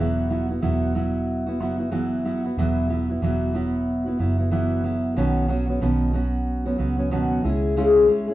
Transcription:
Already playing: steel-string acoustic guitar E3 F#3 B3
0.00 fingered electric bass E1, steel-string acoustic guitar E4 F#4
0.30 steel-string acoustic guitar F#3 B3 E4 F#4
0.49 steel-string acoustic guitar B3 E4 F#4
0.62 fingered electric bass E1, steel-string acoustic guitar E3 F#3 B3 E4 F#4
0.95 steel-string acoustic guitar F#3 B3 E4 F#4
1.47 steel-string acoustic guitar B3 E4 F#4
1.60 fingered electric bass F#1, steel-string acoustic guitar F#3 B3 E4 F#4
1.78 steel-string acoustic guitar B3 E4 F#4
1.91 steel-string acoustic guitar E3 F#3 B3 E4 F#4
2.25 steel-string acoustic guitar F#3 B3 E4 F#4
2.45 steel-string acoustic guitar B3 E4 F#4
2.57 fingered electric bass E1, steel-string acoustic guitar E3 F#3 B3 E4 F#4
2.89 steel-string acoustic guitar F#3 B3 E4 F#4
3.09 steel-string acoustic guitar B3 E4 F#4
3.22 fingered electric bass E1, steel-string acoustic guitar E3 F#3 B3 E4 F#4
3.54 steel-string acoustic guitar F#3 B3 E4 F#4
4.06 steel-string acoustic guitar B3 E4 F#4
4.19 fingered electric bass F#1, steel-string acoustic guitar F#3 B3 E4 F#4
4.38 steel-string acoustic guitar B3 E4 F#4
4.51 steel-string acoustic guitar E3 F#3 B3 E4 F#4
4.84 steel-string acoustic guitar F#3 B3 E4 F#4
5.16 fingered electric bass B1, steel-string acoustic guitar B2 D#3 F#3 B3 C#4 F#4
5.48 steel-string acoustic guitar F#3 B3 C#4 F#4
5.68 steel-string acoustic guitar F#3 B3 C#4 F#4
5.81 fingered electric bass B1, steel-string acoustic guitar B2 D#3 F#3 B3 C#4 F#4
6.13 steel-string acoustic guitar F#3 B3 C#4 F#4
6.65 steel-string acoustic guitar F#3 B3 C#4 F#4
6.78 fingered electric bass C#2, steel-string acoustic guitar F#3 B3 C#4 F#4
6.97 steel-string acoustic guitar F#3 B3 C#4 F#4
7.11 steel-string acoustic guitar B2 D#3 F#3 B3 C#4 F#4
7.44 fingered electric bass C#2, steel-string acoustic guitar G#3 C#4 E4 G#4
7.77 steel-string acoustic guitar C#3 G#3 C#4 E4 G#4
8.08 steel-string acoustic guitar G#3 C#4 E4 G#4
8.27 steel-string acoustic guitar C#4 E4 G#4

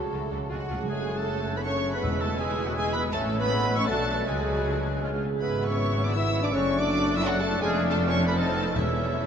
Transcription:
Already playing: timpani C#3, harp C#3 A3 F#4 A4, violin section A4, flute section A5
0.12 double bass section C#2, cello section C#3, viola section F#3 F#4, french horn section A3, harp F#4, violin section A4
0.31 double bass section C#2, cello section C#3, viola section F#3 F#4, french horn section F#3, violin section A4, harp A4
0.49 double bass section C#2, timpani C#3, harp C#3, cello section C#3, french horn section F#3 G#3, viola section G#3 F4, oboe F#4, violin section F#4 G#4 F#5
0.59 timpani C#3
0.67 double bass section C#2, timpani C#3, viola section G#3 F4, french horn section A3, harp F4 G#4, violin section G#4
0.72 cello section C#3, timpani C#3
0.83 timpani C#3
0.88 double bass section F#1, harp F#2, cello section F#2, french horn section G#3, bassoon A3, viola section A3 A4, oboe G#4, violin section G#4 G#5, clarinet C#5, flute section F#6
1.09 harp C#3
1.17 french horn section A3, oboe A4, violin section A4 A5
1.29 harp C#4
1.49 harp D4
1.57 french horn section B3, violin section B4 B5, oboe B4
1.65 bassoon A3, french horn section C#4, harp C#4, violin section C#5 C#6, oboe C#5, clarinet C#5, flute section F#6
1.86 harp C#3
1.94 french horn section B3, violin section B4 B5, oboe B4
2.02 double bass section E1, cello section E2, harp E2, timpani E2, viola section G#3 E4, bassoon G#3, clarinet B4, flute section E6
2.21 harp B2, french horn section A3, oboe A4, violin section A4 A5
2.38 french horn section G#3, bassoon G#3, harp E4, violin section G#4 G#5, oboe G#4, clarinet B4, flute section E6
2.60 harp F#4
2.67 french horn section F#3, oboe F#4, violin section F#4 F#5
2.75 french horn section G#3, bassoon G#3, harp E4, oboe G#4, violin section G#4 G#5, clarinet B4, flute section E6
2.94 harp B2, french horn section B3, oboe B4, violin section B4 B5
3.12 double bass section A1, harp A2, cello section A2, french horn section A3, viola section A3 C#4, bassoon A3, oboe A4, violin section A4 A5, clarinet C#5, flute section E6
3.33 harp E3
3.40 french horn section B3, oboe B4, violin section B4 B5
3.51 bassoon G#3, harp E4
3.70 harp F#4
3.77 french horn section C#4, oboe C#5, violin section C#5 C#6
3.86 double bass section B1, cello section B2, harp B2, bassoon F#3, viola section F#3 D4, french horn section A3, oboe A4, violin section A4 A5, clarinet D5, flute section F#6
4.08 harp F#4
4.25 double bass section C#2, cello section C#3, harp C#3, bassoon G#3, french horn section G#3, viola section F#4, oboe G#4, clarinet C#5, violin section G#5, flute section F#6
4.29 violin section G#4
4.46 harp G#3
4.66 harp C#4
4.84 harp D4
5.02 harp C#3, viola section G#3 F4, bassoon G#3, clarinet C#5, flute section F6
5.23 harp F4 G#4
5.41 double bass section G#1, harp G#2, cello section G#2, bassoon B3, french horn section B3, viola section B3 E4, oboe B4, violin section B4 B5, clarinet E5, flute section E6
5.61 harp G#3
5.68 french horn section C#4, oboe C#5, violin section C#5 C#6
5.79 harp B3
5.98 harp C#4
6.06 french horn section D4, oboe D5, violin section D5 D6
6.15 bassoon B3, harp B3, french horn section E4, clarinet E5, oboe E5, violin section E5 E6, flute section E6
6.35 harp G#3
6.42 french horn section D4, violin section D5 D6, oboe D5
6.51 double bass section F#1, harp F#2, cello section F#2, viola section A3 D4, bassoon A3, french horn section C#4, violin section C#5 C#6, oboe C#5, clarinet D5, flute section F#6
6.71 harp F#3
6.78 french horn section D4, violin section D5 D6, oboe D5
6.89 harp A3
7.07 harp B3
7.15 french horn section E4, violin section E5 E6, oboe E5
7.24 french horn section F#3, harp A3, bassoon A3, violin section F#4 F#5, oboe F#4, clarinet D5, flute section F#6
7.41 harp F#3, french horn section A3, violin section A4 A5, oboe A4
7.61 double bass section F1, harp F2, cello section F2, french horn section G#3, bassoon A3, viola section A3 D4, violin section G#4 G#5, oboe G#4, clarinet D5, flute section F6
7.80 harp F3
7.89 french horn section A3, oboe A4, violin section A4 A5
7.98 harp A3, bassoon A3
8.06 french horn section C#4, violin section C#5 C#6, oboe C#5
8.17 harp B3
8.25 french horn section B3, violin section B4 B5, oboe B4
8.35 harp F2, french horn section A3, bassoon C4, viola section C4 D#4, violin section A4 A5, oboe A4, clarinet D#5, flute section F6
8.55 bassoon B3, harp D#4 A4
8.74 double bass section E1, timpani E2, harp E2, cello section E2, french horn section E3, bassoon A3, viola section A3 C#4, violin section E4 E5, oboe E4, clarinet C#5, flute section E6
8.95 harp E3
9.16 harp C#4

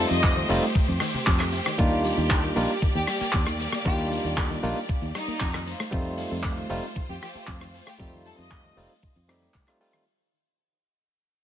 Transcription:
Already playing: tine electric piano G3 A3 C4 D#4 F4, string section A3 G4 C5
0.10 fingered electric bass F2, synth arpeggio sound A3, violin section D#5, shaker
0.24 synth arpeggio sound C3, kick, clap, shaker
0.37 synth arpeggio sound D#3, shaker
0.49 fingered electric bass F1, tine electric piano G3 A3 C4 D#4 F4, synth arpeggio sound A3, open hi-hat, shaker
0.62 synth arpeggio sound A3, shaker
0.75 synth arpeggio sound D#3, kick, shaker
0.88 fingered electric bass F2, synth arpeggio sound D#3, shaker
1.00 synth arpeggio sound D#3, cross-stick, open hi-hat, shaker
1.14 synth arpeggio sound C3, muted fingered electric bass stroke, shaker
1.27 fingered electric bass F2, synth arpeggio sound C3, kick, clap, shaker
1.40 synth arpeggio sound A3, cross-stick, clap
1.52 synth arpeggio sound A3, open hi-hat, shaker
1.54 shaker
1.65 synth arpeggio sound D#3, cross-stick, shaker
1.67 shaker
1.78 fingered electric bass D#2, synth arpeggio sound D3, tine electric piano G3 A#3 D4 D#4 F4, string section A#3 D5, kick, shaker
1.92 synth arpeggio sound D#3
2.04 synth arpeggio sound G3, open hi-hat, shaker
2.06 shaker
2.17 fingered electric bass D#2, synth arpeggio sound A#3, shaker
2.30 synth arpeggio sound D3, kick, clap, shaker
2.44 synth arpeggio sound D#3, shaker
2.56 fingered electric bass A#1, tine electric piano G3 A#3 D4 D#4 F4, synth arpeggio sound A#3, open hi-hat, shaker
2.69 synth arpeggio sound A#3, shaker
2.82 synth arpeggio sound D#3, muted fingered electric bass stroke, kick, shaker
2.95 fingered electric bass D#2, synth arpeggio sound D#3, violin section G4, shaker
3.07 synth arpeggio sound G3, violin section G4, cross-stick, open hi-hat, shaker
3.21 synth arpeggio sound A#3, violin section G4, muted fingered electric bass stroke, shaker
3.33 fingered electric bass D#2, synth arpeggio sound D3, kick, clap, shaker
3.47 synth arpeggio sound D#3, cross-stick
3.60 synth arpeggio sound G3, open hi-hat, shaker
3.72 synth arpeggio sound A#3, cross-stick, open hi-hat, shaker
3.85 fingered electric bass D#2, synth arpeggio sound D3, tine electric piano G3 A#3 D4 D#4 F4, violin section G4, kick, shaker
3.99 synth arpeggio sound D#3
4.11 synth arpeggio sound G3, open hi-hat, shaker
4.24 fingered electric bass D#2, synth arpeggio sound A#3, shaker
4.37 synth arpeggio sound D3, kick, clap, shaker
4.50 synth arpeggio sound D#3, shaker
4.63 fingered electric bass A#1, tine electric piano G3 A#3 D4 D#4 F4, synth arpeggio sound A#3, open hi-hat, shaker
4.76 synth arpeggio sound A#3, shaker
4.89 synth arpeggio sound D#3, kick, shaker
5.02 fingered electric bass D#2, synth arpeggio sound D#3, shaker
5.15 synth arpeggio sound G3, violin section D#4, cross-stick, open hi-hat, shaker
5.28 synth arpeggio sound A#3, muted fingered electric bass stroke, shaker
5.40 fingered electric bass F2, synth arpeggio sound D3, kick, clap, open hi-hat, shaker
5.54 synth arpeggio sound D#3, cross-stick, clap
5.67 synth arpeggio sound F3, string section A3 F4 C5, open hi-hat, shaker
5.79 synth arpeggio sound A3, cross-stick, shaker
5.91 fingered electric bass F2, synth arpeggio sound C3, tine electric piano G3 A3 C4 D#4 F4, kick, shaker
6.06 synth arpeggio sound D#3
6.17 synth arpeggio sound F3, open hi-hat, shaker
6.31 fingered electric bass F2, synth arpeggio sound A3, shaker
6.43 synth arpeggio sound C3, kick, clap, shaker
6.57 synth arpeggio sound D#3, shaker
6.69 fingered electric bass F1, tine electric piano G3 A3 C4 D#4 F4, synth arpeggio sound A3, open hi-hat, shaker
6.83 synth arpeggio sound A3, shaker
6.96 synth arpeggio sound D#3, muted fingered electric bass stroke, kick, shaker
7.09 fingered electric bass F2, synth arpeggio sound D#3, violin section G4, shaker
7.21 synth arpeggio sound F3, violin section G4, cross-stick, open hi-hat, shaker
7.23 shaker
7.35 synth arpeggio sound A3, violin section G4, muted fingered electric bass stroke, shaker
7.47 fingered electric bass F2, synth arpeggio sound C3, kick, clap, shaker
7.61 synth arpeggio sound D#3, cross-stick
7.73 synth arpeggio sound F3, open hi-hat, shaker
7.86 synth arpeggio sound A3, violin section G4, cross-stick, open hi-hat, shaker
7.88 shaker
7.99 fingered electric bass F2, synth arpeggio sound C3, tine electric piano G3 A3 C4 D#4 F4, violin section G4, kick, shaker
8.13 synth arpeggio sound D#3, shaker
8.25 synth arpeggio sound F3, violin section A4, open hi-hat, shaker
8.38 fingered electric bass F2, synth arpeggio sound A3, violin section D#5, shaker
8.51 synth arpeggio sound C3, kick, clap, shaker
8.64 synth arpeggio sound D#3, shaker
8.77 fingered electric bass F1, tine electric piano G3 A3 C4 D#4 F4, synth arpeggio sound A3, open hi-hat, shaker
8.90 synth arpeggio sound A3, shaker
9.02 synth arpeggio sound D#3, kick, shaker
9.16 fingered electric bass F2, synth arpeggio sound D#3, shaker
9.28 tine electric piano G3 A3 C4 D#4 G4, synth arpeggio sound C4, cross-stick, open hi-hat, shaker
9.42 synth arpeggio sound F3, shaker
9.54 fingered electric bass C2, synth arpeggio sound A3, kick, clap, open hi-hat, shaker
9.67 tine electric piano G3 A3 C4 D#4 F4, synth arpeggio sound F4, cross-stick, clap, shaker
9.80 tine electric piano G3 A3 C4 D#4 F4, synth arpeggio sound A3, open hi-hat, shaker
9.93 synth arpeggio sound D#3, cross-stick, shaker

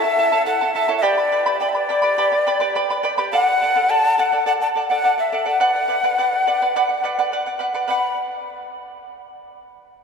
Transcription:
Already playing: quena E5
0.04 charango E4 A4 A5
0.19 charango E4 A4 E5 A5
0.32 charango E4 A4 C#5 E5 A5
0.46 charango E4 A4 E5 A5, quena F#5
0.61 charango E4 A4 A5
0.74 charango E4 A4 E5 A5, quena E5
0.88 charango E4 A4 C#5 E5 A5
0.98 quena D5 E5
1.02 charango G4 B4 D5 G5 B5
1.18 charango B4 D5 B5
1.32 charango B4 D5 G5 B5
1.46 charango G4 B4 D5 G5 B5
1.60 charango B4 D5 G5 B5, quena D5
1.69 quena D5 E5
1.75 charango B4 D5 B5
1.89 charango B4 D5 G5 B5
2.02 charango G4 B4 D5 G5 B5
2.18 charango G4 B4 D5 G5 B5
2.32 charango B4 D5 B5
2.47 charango B4 D5 G5 B5
2.60 charango G4 B4 D5 G5 B5
2.75 charango B4 D5 G5 B5
2.90 charango B4 D5 B5
3.03 charango B4 D5 G5 B5
3.18 charango G4 B4 D5 G5 B5
3.33 charango A4 D5 F#5, quena F#5
3.46 charango D5 F#5
3.61 charango A4 D5 F#5
3.75 charango A4 D5 F#5
3.90 charango A4 D5 F#5, quena A5
4.04 charango D5 F#5
4.18 charango A4 D5 F#5, quena F#5
4.32 charango A4 D5 F#5
4.46 charango A4 D5 F#5, quena F#5
4.60 charango D5 F#5, quena A5
4.75 charango A4 D5 F#5
4.90 charango A4 D5 F#5, quena F#5
5.04 charango A4 D5 F#5
5.18 charango D5 F#5, quena E5
5.32 charango A4 D5 F#5
5.46 charango A4 D5 F#5, quena F#5
5.60 charango B4 D5 F#5
5.75 charango D5 F#5
5.88 charango B4 D5 F#5
6.03 charango B4 D5 F#5
6.18 charango B4 D5 F#5
6.33 charango D5 F#5
6.47 charango B4 D5 F#5
6.62 charango B4 D5 F#5
6.76 charango B4 D5 F#5
6.89 charango D5 F#5
7.03 charango B4 D5 F#5
7.19 charango B4 D5 F#5
7.32 charango B4 D5 F#5
7.46 charango D5 F#5
7.59 charango B4 D5 F#5
7.74 charango B4 D5 F#5
7.88 charango B4 D5 F#5, quena B5

